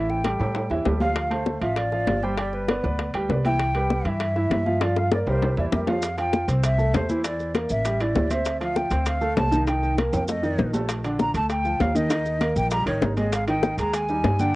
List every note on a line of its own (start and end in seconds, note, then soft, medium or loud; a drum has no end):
0.00 0.34 A1 medium
0.00 0.19 E3 medium
0.00 0.19 E4 medium
0.00 0.12 E5 medium
0.00 0.20 E5 medium
0.09 0.71 G5 medium
0.09 high bongo soft
0.09 high conga soft
0.24 0.37 G3 medium
0.24 0.37 G4 medium
0.24 0.37 A4 medium
0.24 high bongo medium
0.24 high conga medium
0.24 high timbale medium
0.24 low timbale medium
0.39 0.68 A2 medium
0.39 0.64 G3 medium
0.39 0.65 G4 medium
0.39 0.65 A4 medium
0.39 high bongo soft
0.39 high conga soft
0.39 high timbale medium
0.55 high bongo medium
0.55 high conga soft
0.55 high timbale medium
0.70 0.84 E2 medium
0.70 0.83 E3 medium
0.70 0.83 E4 medium
0.70 0.83 E5 medium
0.70 high bongo soft
0.70 high conga soft
0.70 low timbale medium
0.85 1.56 D2 medium
0.85 0.98 G3 medium
0.85 0.98 G4 medium
0.85 0.98 A4 medium
0.85 high bongo soft
0.85 low bongo medium
0.85 high conga medium
0.85 low timbale medium
1.00 1.25 F3 medium
1.00 1.26 F4 medium
1.00 1.26 F5 medium
1.00 1.44 F5 medium
1.00 high conga medium
1.00 low timbale medium
1.16 high bongo medium
1.16 high conga soft
1.16 high timbale medium
1.31 1.56 A3 medium
1.31 1.56 A4 medium
1.31 1.56 C5 medium
1.31 high bongo soft
1.31 high conga soft
1.31 high timbale medium
1.46 high bongo medium
1.46 high conga medium
1.46 low timbale medium
1.61 2.04 A1 medium
1.61 1.87 F3 medium
1.61 1.87 F4 medium
1.61 1.79 E5 medium
1.61 1.87 F5 medium
1.61 high bongo soft
1.61 high conga soft
1.61 high timbale medium
1.77 2.26 D5 medium
1.77 high bongo medium
1.77 high conga soft
1.77 high timbale medium
1.92 2.17 F3 medium
1.92 2.18 F4 medium
1.92 2.18 F5 medium
1.92 high bongo soft
1.92 high conga soft
2.07 2.78 G1 medium
2.07 high bongo soft
2.07 low bongo medium
2.07 high conga medium
2.07 high timbale medium
2.07 low timbale medium
2.23 2.35 G3 medium
2.23 2.35 G4 medium
2.23 2.38 C5 medium
2.23 2.36 G5 medium
2.23 high conga medium
2.38 2.63 G3 medium
2.38 2.63 G4 medium
2.38 2.56 D5 medium
2.38 2.64 G5 medium
2.38 high bongo medium
2.38 high conga soft
2.38 high timbale medium
2.53 3.14 B4 medium
2.53 high bongo soft
2.53 high conga soft
2.68 2.81 B3 medium
2.68 2.81 B4 medium
2.68 2.81 D5 medium
2.68 high bongo medium
2.68 high conga medium
2.68 high timbale medium
2.68 low timbale medium
2.83 3.12 D2 loud
2.83 3.08 B3 medium
2.83 3.09 B4 medium
2.83 3.09 D5 medium
2.83 high bongo soft
2.83 high conga soft
2.99 high bongo medium
2.99 high conga soft
2.99 high timbale medium
3.14 3.28 D2 medium
3.14 3.27 G3 medium
3.14 3.27 G4 medium
3.14 3.27 G5 medium
3.14 high bongo soft
3.14 high conga soft
3.14 high timbale medium
3.29 4.00 C2 medium
3.29 3.42 B3 medium
3.29 3.42 B4 medium
3.29 3.42 D5 medium
3.29 high bongo soft
3.29 low bongo medium
3.29 high conga medium
3.29 low timbale medium
3.45 3.70 E3 medium
3.45 3.70 E4 medium
3.45 3.70 E5 medium
3.45 4.08 G5 loud
3.45 high conga medium
3.45 high timbale medium
3.59 high bongo medium
3.59 high timbale medium
3.75 4.00 G3 medium
3.75 4.00 G4 medium
3.75 4.00 B4 medium
3.75 high bongo soft
3.75 high conga soft
3.75 high timbale medium
3.90 high bongo medium
3.90 high conga loud
3.90 low timbale medium
4.05 4.47 G2 loud
4.05 4.30 E3 medium
4.05 4.31 E4 medium
4.05 4.31 E5 medium
4.05 4.84 E5 medium
4.05 high bongo soft
4.05 high conga soft
4.05 high timbale medium
4.20 high bongo medium
4.20 high conga soft
4.20 high timbale medium
4.36 4.61 E3 medium
4.36 4.61 E4 medium
4.36 4.61 E5 medium
4.36 high bongo soft
4.36 high conga soft
4.50 5.21 G2 medium
4.50 high bongo soft
4.50 low bongo medium
4.50 high conga medium
4.50 high timbale medium
4.50 low timbale medium
4.66 4.78 F3 medium
4.66 4.78 F4 medium
4.66 4.79 F5 medium
4.66 high conga medium
4.81 5.06 F3 medium
4.81 5.06 F4 medium
4.81 4.99 D5 medium
4.81 5.06 F5 medium
4.81 high bongo loud
4.81 high conga soft
4.81 high timbale medium
4.96 5.12 F5 medium
4.96 high bongo medium
4.96 high conga soft
5.11 5.24 A#3 medium
5.11 5.24 A#4 medium
5.11 5.25 D5 medium
5.11 5.19 D5 medium
5.11 high bongo loud
5.11 high conga medium
5.11 high timbale medium
5.26 5.55 C2 medium
5.26 5.52 G3 medium
5.26 5.52 G4 medium
5.26 5.52 A#4 medium
5.26 5.56 C5 medium
5.26 high conga soft
5.26 high timbale medium
5.42 low bongo medium
5.42 high conga soft
5.42 high timbale medium
5.57 5.71 E2 medium
5.57 5.70 E3 medium
5.57 5.70 E4 medium
5.57 5.65 D5 medium
5.57 5.70 E5 medium
5.57 high conga soft
5.57 low timbale medium
5.72 6.43 F2 medium
5.72 5.85 G3 medium
5.72 5.85 G4 medium
5.72 5.85 A#4 medium
5.72 5.80 E5 medium
5.72 low bongo medium
5.72 high conga medium
5.87 6.00 F3 medium
5.87 6.00 F4 medium
5.87 6.00 F5 medium
5.87 6.16 F5 medium
5.87 low bongo medium
5.87 high conga medium
5.87 low timbale medium
6.02 high bongo medium
6.02 high conga soft
6.02 high timbale medium
6.02 maracas medium
6.18 6.43 F3 medium
6.18 6.43 F4 medium
6.18 6.47 G5 medium
6.18 high bongo soft
6.18 high conga soft
6.18 high timbale medium
6.18 maracas soft
6.33 high bongo medium
6.33 high conga medium
6.33 low timbale medium
6.33 maracas soft
6.48 6.91 C2 loud
6.48 6.73 C4 medium
6.48 6.73 C5 medium
6.48 high bongo soft
6.48 high conga soft
6.48 high timbale medium
6.48 maracas medium
6.63 6.96 E5 loud
6.63 high bongo medium
6.63 high conga soft
6.63 high timbale medium
6.63 maracas loud
6.78 7.03 A3 medium
6.78 7.04 A4 medium
6.78 high bongo soft
6.78 high conga soft
6.78 maracas soft
6.93 7.64 E2 medium
6.93 7.25 C5 medium
6.93 high bongo soft
6.93 low bongo medium
6.93 high conga medium
6.93 high timbale medium
6.93 low timbale medium
6.93 maracas soft
7.09 7.22 E3 medium
7.09 7.22 E4 medium
7.09 high conga medium
7.09 maracas medium
7.24 7.49 E3 medium
7.24 7.50 E4 medium
7.24 7.53 D5 medium
7.24 high bongo medium
7.24 high conga soft
7.24 high timbale medium
7.24 maracas medium
7.39 high bongo soft
7.39 high conga soft
7.39 maracas soft
7.54 7.80 A#3 medium
7.54 7.80 A#4 medium
7.54 high bongo medium
7.54 high conga medium
7.54 high timbale medium
7.54 low timbale medium
7.54 maracas soft
7.69 8.12 A1 medium
7.69 8.03 E5 medium
7.69 high bongo soft
7.69 high conga soft
7.69 maracas medium
7.85 7.98 G3 medium
7.85 7.98 G4 medium
7.85 high bongo medium
7.85 high conga soft
7.85 high timbale medium
7.85 maracas medium
8.00 8.26 E3 medium
8.00 8.26 E4 medium
8.00 8.33 D5 medium
8.00 high bongo soft
8.00 high conga soft
8.00 high timbale medium
8.00 maracas soft
8.15 8.86 D2 medium
8.15 high bongo soft
8.15 low bongo medium
8.15 high conga medium
8.15 low timbale medium
8.15 maracas soft
8.30 8.56 C4 medium
8.30 8.56 C5 medium
8.30 8.61 E5 loud
8.30 high conga medium
8.30 high timbale medium
8.30 maracas medium
8.45 high bongo medium
8.45 high conga soft
8.45 high timbale medium
8.45 maracas medium
8.61 8.86 F3 medium
8.61 8.86 F4 medium
8.61 8.78 F5 medium
8.61 high bongo soft
8.61 high conga soft
8.61 high timbale medium
8.61 maracas soft
8.76 9.08 G5 medium
8.76 high bongo medium
8.76 high conga medium
8.76 low timbale medium
8.76 maracas soft
8.91 9.34 D2 loud
8.91 9.16 C4 medium
8.91 9.17 C5 medium
8.91 high bongo soft
8.91 high conga soft
8.91 high timbale medium
8.91 maracas medium
9.06 9.37 F5 medium
9.06 high bongo medium
9.06 high conga soft
9.06 high timbale medium
9.06 maracas medium
9.21 9.47 A3 medium
9.21 9.47 A4 medium
9.21 high bongo soft
9.21 high conga soft
9.21 maracas soft
9.37 10.08 C2 medium
9.37 9.66 A5 loud
9.37 high bongo soft
9.37 low bongo medium
9.37 high conga medium
9.37 high timbale medium
9.37 low timbale medium
9.37 maracas soft
9.52 9.64 D#3 medium
9.52 9.65 D#4 medium
9.52 high conga medium
9.52 maracas medium
9.67 9.92 D#3 medium
9.67 9.93 D#4 medium
9.67 9.96 G5 medium
9.67 high bongo medium
9.67 high timbale medium
9.67 maracas medium
9.83 high bongo soft
9.83 high conga soft
9.83 maracas soft
9.97 10.23 A#3 medium
9.97 10.23 A#4 medium
9.97 high bongo medium
9.97 high conga loud
9.97 high timbale medium
9.97 low timbale medium
9.97 maracas soft
10.13 10.55 F2 loud
10.13 10.27 G5 medium
10.13 high bongo soft
10.13 high conga soft
10.13 high timbale medium
10.13 maracas medium
10.28 10.41 A3 medium
10.28 10.41 A4 medium
10.28 10.71 D#5 medium
10.28 high bongo medium
10.28 high conga soft
10.28 maracas medium
10.43 10.68 D#3 medium
10.43 10.68 D#4 medium
10.43 high bongo soft
10.43 high conga soft
10.43 maracas soft
10.58 11.29 A#1 medium
10.58 high bongo soft
10.58 low bongo medium
10.58 high conga medium
10.58 maracas soft
10.73 10.99 A3 medium
10.73 10.99 A4 medium
10.73 high conga medium
10.73 low timbale medium
10.73 maracas medium
10.89 high bongo medium
10.89 high conga soft
10.89 high timbale medium
10.89 maracas medium
11.04 11.29 D3 medium
11.04 11.29 D4 medium
11.04 high bongo soft
11.04 high conga soft
11.04 high timbale medium
11.04 maracas soft
11.19 11.34 A#5 loud
11.19 high bongo medium
11.19 high conga loud
11.19 low timbale medium
11.19 maracas soft
11.34 11.77 D2 medium
11.34 11.59 A3 medium
11.34 11.59 A4 medium
11.34 11.49 A5 loud
11.34 high bongo soft
11.34 high conga soft
11.34 high timbale medium
11.34 maracas medium
11.49 11.82 G5 loud
11.49 high bongo medium
11.49 high conga soft
11.49 high timbale medium
11.49 maracas medium
11.65 11.90 F3 medium
11.65 11.90 F4 medium
11.65 high bongo soft
11.65 high conga soft
11.65 maracas soft
11.80 12.51 D#2 medium
11.80 11.97 F5 medium
11.80 high bongo soft
11.80 low bongo medium
11.80 high conga medium
11.80 high timbale medium
11.80 low timbale medium
11.80 maracas soft
11.95 12.08 D#3 medium
11.95 12.08 D#4 medium
11.95 12.56 D#5 medium
11.95 high conga medium
11.95 maracas medium
12.10 12.35 D#3 medium
12.10 12.35 D#4 medium
12.10 high bongo medium
12.10 high conga soft
12.10 high timbale medium
12.10 maracas medium
12.25 high bongo soft
12.25 high conga soft
12.25 maracas soft
12.41 12.66 A#3 medium
12.41 12.66 A#4 medium
12.41 high bongo medium
12.41 high conga medium
12.41 high timbale medium
12.41 low timbale medium
12.41 maracas soft
12.56 12.84 A#1 loud
12.56 12.71 G5 medium
12.56 high bongo soft
12.56 high conga soft
12.56 maracas medium
12.71 12.84 G3 medium
12.71 12.84 G4 medium
12.71 12.86 A#5 loud
12.71 high bongo medium
12.71 high conga soft
12.71 high timbale medium
12.71 maracas medium
12.86 13.01 A1 medium
12.86 13.11 D#3 medium
12.86 13.12 D#4 medium
12.86 13.15 C#5 medium
12.86 high bongo soft
12.86 high conga soft
12.86 high timbale medium
12.86 maracas soft
13.01 13.72 G#1 medium
13.01 high bongo soft
13.01 low bongo medium
13.01 high conga medium
13.01 low timbale medium
13.01 maracas soft
13.17 13.42 G#3 medium
13.17 13.42 G#4 medium
13.17 13.31 D#5 medium
13.17 high conga medium
13.17 high timbale medium
13.17 maracas medium
13.32 13.47 F5 medium
13.32 high bongo medium
13.32 high conga soft
13.32 high timbale medium
13.32 maracas medium
13.48 13.73 D#3 medium
13.48 13.73 D#4 medium
13.48 13.76 G5 medium
13.48 high bongo soft
13.48 high conga soft
13.48 high timbale medium
13.48 maracas soft
13.63 high bongo medium
13.63 high conga loud
13.63 low timbale medium
13.63 maracas soft
13.78 14.20 D#2 medium
13.78 14.04 G#3 medium
13.78 14.04 G#4 medium
13.78 13.96 A#5 medium
13.78 high bongo soft
13.78 high conga soft
13.78 high timbale medium
13.78 maracas medium
13.93 14.42 G#5 loud
13.93 high bongo medium
13.93 high conga soft
13.93 high timbale medium
13.93 maracas medium
14.09 14.34 G3 medium
14.09 14.34 D#4 medium
14.09 high bongo soft
14.09 high conga soft
14.09 maracas soft
14.24 14.55 G2 medium
14.24 high bongo soft
14.24 low bongo medium
14.24 high conga medium
14.24 high timbale medium
14.24 low timbale medium
14.24 maracas soft
14.39 14.52 D3 medium
14.39 14.52 D4 medium
14.39 14.55 G5 loud
14.39 high conga medium
14.39 maracas medium